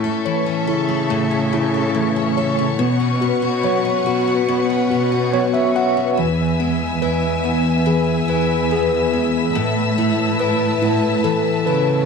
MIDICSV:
0, 0, Header, 1, 5, 480
1, 0, Start_track
1, 0, Key_signature, 4, "major"
1, 0, Tempo, 845070
1, 1587, Time_signature, 4, 2, 24, 8
1, 6847, End_track
2, 0, Start_track
2, 0, Title_t, "String section"
2, 0, Program_c, 0, 48
2, 0, Note_on_c, 0, 69, 69
2, 0, Note_on_c, 0, 73, 67
2, 0, Note_on_c, 0, 76, 69
2, 0, Note_on_c, 0, 85, 80
2, 1567, Note_off_c, 0, 76, 0
2, 1568, Note_off_c, 0, 69, 0
2, 1590, Note_on_c, 0, 71, 76
2, 1593, Note_on_c, 0, 78, 72
2, 3484, Note_off_c, 0, 73, 0
2, 3484, Note_off_c, 0, 85, 0
2, 3489, Note_off_c, 0, 71, 0
2, 3491, Note_off_c, 0, 78, 0
2, 3507, Note_on_c, 0, 71, 66
2, 3507, Note_on_c, 0, 76, 73
2, 3508, Note_on_c, 0, 88, 81
2, 3509, Note_on_c, 0, 80, 63
2, 5409, Note_off_c, 0, 80, 0
2, 5434, Note_on_c, 0, 81, 62
2, 6847, Note_off_c, 0, 71, 0
2, 6847, Note_off_c, 0, 76, 0
2, 6847, Note_off_c, 0, 81, 0
2, 6847, Note_off_c, 0, 88, 0
2, 6847, End_track
3, 0, Start_track
3, 0, Title_t, "Tine electric piano"
3, 0, Program_c, 1, 4
3, 0, Control_c, 1, 64, 127
3, 0, Note_on_c, 1, 57, 55
3, 0, Note_on_c, 1, 64, 44
3, 144, Note_on_c, 1, 73, 45
3, 383, Note_off_c, 1, 64, 0
3, 390, Note_on_c, 1, 64, 49
3, 618, Note_off_c, 1, 57, 0
3, 625, Note_on_c, 1, 57, 48
3, 868, Note_off_c, 1, 64, 0
3, 875, Note_on_c, 1, 64, 53
3, 1083, Note_off_c, 1, 73, 0
3, 1104, Note_off_c, 1, 57, 0
3, 1111, Note_on_c, 1, 57, 56
3, 1346, Note_on_c, 1, 73, 46
3, 1569, Note_off_c, 1, 64, 0
3, 1575, Note_off_c, 1, 57, 0
3, 1579, Note_off_c, 1, 73, 0
3, 1586, Note_on_c, 1, 59, 61
3, 1594, Control_c, 1, 64, 0
3, 1688, Control_c, 1, 64, 127
3, 1824, Note_on_c, 1, 66, 45
3, 2070, Note_on_c, 1, 73, 54
3, 2304, Note_off_c, 1, 66, 0
3, 2310, Note_on_c, 1, 66, 53
3, 2544, Note_off_c, 1, 59, 0
3, 2551, Note_on_c, 1, 59, 57
3, 2778, Note_off_c, 1, 66, 0
3, 2785, Note_on_c, 1, 66, 56
3, 3006, Note_off_c, 1, 73, 0
3, 3025, Note_off_c, 1, 59, 0
3, 3029, Note_on_c, 1, 73, 64
3, 3032, Note_on_c, 1, 59, 60
3, 3140, Note_off_c, 1, 73, 0
3, 3144, Note_on_c, 1, 76, 58
3, 3257, Note_off_c, 1, 76, 0
3, 3269, Note_on_c, 1, 73, 42
3, 3270, Note_on_c, 1, 78, 59
3, 3484, Note_off_c, 1, 66, 0
3, 3492, Note_off_c, 1, 78, 0
3, 3495, Note_off_c, 1, 59, 0
3, 3501, Note_off_c, 1, 73, 0
3, 3515, Control_c, 1, 64, 0
3, 3515, Note_on_c, 1, 52, 56
3, 3605, Control_c, 1, 64, 127
3, 3750, Note_on_c, 1, 59, 50
3, 3988, Note_on_c, 1, 71, 57
3, 4224, Note_off_c, 1, 59, 0
3, 4231, Note_on_c, 1, 59, 49
3, 4469, Note_on_c, 1, 68, 49
3, 4705, Note_off_c, 1, 71, 0
3, 4712, Note_on_c, 1, 71, 51
3, 4948, Note_off_c, 1, 68, 0
3, 4955, Note_on_c, 1, 68, 55
3, 5166, Note_off_c, 1, 59, 0
3, 5189, Note_on_c, 1, 59, 44
3, 5408, Note_off_c, 1, 52, 0
3, 5408, Note_off_c, 1, 71, 0
3, 5417, Note_off_c, 1, 68, 0
3, 5421, Note_off_c, 1, 59, 0
3, 5434, Note_on_c, 1, 57, 59
3, 5435, Control_c, 1, 64, 0
3, 5516, Control_c, 1, 64, 127
3, 5671, Note_on_c, 1, 64, 44
3, 5908, Note_on_c, 1, 71, 57
3, 6138, Note_off_c, 1, 64, 0
3, 6145, Note_on_c, 1, 64, 47
3, 6384, Note_on_c, 1, 69, 56
3, 6618, Note_off_c, 1, 71, 0
3, 6625, Note_on_c, 1, 71, 59
3, 6847, Note_off_c, 1, 57, 0
3, 6847, Note_off_c, 1, 64, 0
3, 6847, Note_off_c, 1, 69, 0
3, 6847, Note_off_c, 1, 71, 0
3, 6847, End_track
4, 0, Start_track
4, 0, Title_t, "Steel-string acoustic guitar"
4, 0, Program_c, 2, 25
4, 0, Note_on_c, 2, 45, 67
4, 0, Note_on_c, 2, 57, 49
4, 0, Note_on_c, 2, 61, 53
4, 22, Note_on_c, 2, 69, 62
4, 145, Note_on_c, 2, 52, 50
4, 260, Note_off_c, 2, 61, 0
4, 263, Note_on_c, 2, 61, 53
4, 376, Note_off_c, 2, 69, 0
4, 383, Note_on_c, 2, 69, 58
4, 496, Note_off_c, 2, 57, 0
4, 503, Note_on_c, 2, 57, 53
4, 619, Note_off_c, 2, 45, 0
4, 626, Note_on_c, 2, 45, 71
4, 742, Note_off_c, 2, 61, 0
4, 744, Note_on_c, 2, 61, 53
4, 861, Note_off_c, 2, 57, 0
4, 867, Note_on_c, 2, 57, 51
4, 983, Note_off_c, 2, 69, 0
4, 989, Note_on_c, 2, 69, 54
4, 1098, Note_off_c, 2, 52, 0
4, 1105, Note_on_c, 2, 52, 52
4, 1226, Note_off_c, 2, 61, 0
4, 1228, Note_on_c, 2, 61, 49
4, 1342, Note_off_c, 2, 69, 0
4, 1349, Note_on_c, 2, 69, 57
4, 1462, Note_off_c, 2, 57, 0
4, 1468, Note_on_c, 2, 57, 53
4, 1582, Note_off_c, 2, 45, 0
4, 1584, Note_on_c, 2, 47, 73
4, 1634, Note_off_c, 2, 52, 0
4, 1636, Note_off_c, 2, 57, 0
4, 1636, Note_off_c, 2, 69, 0
4, 1701, Note_off_c, 2, 61, 0
4, 1704, Note_on_c, 2, 61, 55
4, 1828, Note_on_c, 2, 59, 51
4, 1943, Note_on_c, 2, 66, 62
4, 2064, Note_on_c, 2, 54, 62
4, 2180, Note_off_c, 2, 61, 0
4, 2187, Note_on_c, 2, 61, 55
4, 2298, Note_off_c, 2, 66, 0
4, 2305, Note_on_c, 2, 66, 56
4, 2425, Note_off_c, 2, 59, 0
4, 2428, Note_on_c, 2, 59, 57
4, 2540, Note_off_c, 2, 47, 0
4, 2547, Note_on_c, 2, 47, 79
4, 2663, Note_off_c, 2, 61, 0
4, 2670, Note_on_c, 2, 61, 55
4, 2787, Note_off_c, 2, 59, 0
4, 2790, Note_on_c, 2, 59, 55
4, 2901, Note_off_c, 2, 66, 0
4, 2908, Note_on_c, 2, 66, 57
4, 3023, Note_off_c, 2, 54, 0
4, 3030, Note_on_c, 2, 54, 55
4, 3141, Note_off_c, 2, 61, 0
4, 3148, Note_on_c, 2, 61, 53
4, 3263, Note_off_c, 2, 66, 0
4, 3270, Note_on_c, 2, 66, 58
4, 3388, Note_off_c, 2, 59, 0
4, 3390, Note_on_c, 2, 59, 48
4, 3507, Note_on_c, 2, 40, 62
4, 3555, Note_off_c, 2, 47, 0
4, 3556, Note_off_c, 2, 54, 0
4, 3556, Note_off_c, 2, 61, 0
4, 3556, Note_off_c, 2, 66, 0
4, 3745, Note_off_c, 2, 59, 0
4, 3747, Note_on_c, 2, 56, 51
4, 3988, Note_on_c, 2, 64, 59
4, 4225, Note_on_c, 2, 59, 50
4, 4463, Note_on_c, 2, 52, 65
4, 4701, Note_off_c, 2, 64, 0
4, 4704, Note_on_c, 2, 64, 57
4, 4945, Note_off_c, 2, 59, 0
4, 4947, Note_on_c, 2, 59, 50
4, 5181, Note_off_c, 2, 56, 0
4, 5188, Note_on_c, 2, 56, 49
4, 5426, Note_on_c, 2, 45, 75
4, 5427, Note_off_c, 2, 40, 0
4, 5476, Note_off_c, 2, 56, 0
4, 5668, Note_on_c, 2, 57, 55
4, 5685, Note_off_c, 2, 59, 0
4, 5900, Note_off_c, 2, 64, 0
4, 5902, Note_on_c, 2, 64, 53
4, 6147, Note_on_c, 2, 59, 53
4, 6382, Note_off_c, 2, 52, 0
4, 6385, Note_on_c, 2, 52, 68
4, 6621, Note_off_c, 2, 64, 0
4, 6628, Note_on_c, 2, 64, 57
4, 6847, Note_off_c, 2, 45, 0
4, 6847, Note_off_c, 2, 52, 0
4, 6847, Note_off_c, 2, 57, 0
4, 6847, Note_off_c, 2, 59, 0
4, 6847, Note_off_c, 2, 64, 0
4, 6847, End_track
5, 0, Start_track
5, 0, Title_t, "Cello section"
5, 0, Program_c, 3, 48
5, 0, Note_on_c, 3, 45, 86
5, 242, Note_off_c, 3, 45, 0
5, 384, Note_on_c, 3, 49, 87
5, 1563, Note_off_c, 3, 49, 0
5, 1586, Note_on_c, 3, 47, 84
5, 1924, Note_off_c, 3, 47, 0
5, 1952, Note_on_c, 3, 47, 85
5, 2287, Note_off_c, 3, 47, 0
5, 2309, Note_on_c, 3, 47, 75
5, 2765, Note_off_c, 3, 47, 0
5, 2791, Note_on_c, 3, 47, 85
5, 3246, Note_off_c, 3, 47, 0
5, 3507, Note_on_c, 3, 40, 76
5, 3964, Note_off_c, 3, 40, 0
5, 3988, Note_on_c, 3, 40, 87
5, 4685, Note_off_c, 3, 40, 0
5, 4704, Note_on_c, 3, 40, 90
5, 5403, Note_off_c, 3, 40, 0
5, 5429, Note_on_c, 3, 45, 83
5, 6125, Note_off_c, 3, 45, 0
5, 6149, Note_on_c, 3, 45, 87
5, 6485, Note_off_c, 3, 45, 0
5, 6629, Note_on_c, 3, 49, 100
5, 6847, Note_off_c, 3, 49, 0
5, 6847, End_track
0, 0, End_of_file